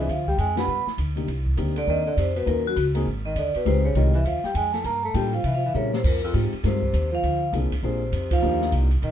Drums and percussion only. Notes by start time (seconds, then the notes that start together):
0.09 kick, ride
0.27 kick
0.38 hi-hat pedal, ride
0.57 snare, ride
0.87 snare
0.98 kick, hi-hat pedal, ride
1.17 ride
1.28 kick, ride
1.46 kick
1.57 hi-hat pedal, ride
1.76 ride
1.87 kick
2.17 hi-hat pedal, ride
2.36 ride
2.47 kick, ride
2.76 kick, hi-hat pedal, ride
2.95 ride
3.06 kick
3.36 kick, hi-hat pedal, ride
3.54 ride
3.65 kick, ride
3.95 kick, hi-hat pedal, ride
4.14 ride
4.25 kick, ride
4.44 snare
4.55 kick, hi-hat pedal, ride
4.74 snare, ride
4.84 kick, ride
5.14 kick, hi-hat pedal, ride
5.33 ride
5.44 kick, ride
5.74 hi-hat pedal
5.93 snare
6.04 kick, crash
6.34 kick, hi-hat pedal, ride
6.53 ride
6.64 kick, snare, ride
6.82 kick
6.93 kick, hi-hat pedal, ride
7.23 kick, ride
7.53 kick, hi-hat pedal, ride
7.72 kick, ride
8.12 kick, hi-hat pedal, ride
8.31 kick, ride
8.61 snare
8.72 kick, hi-hat pedal, ride
8.91 ride
9.02 kick, ride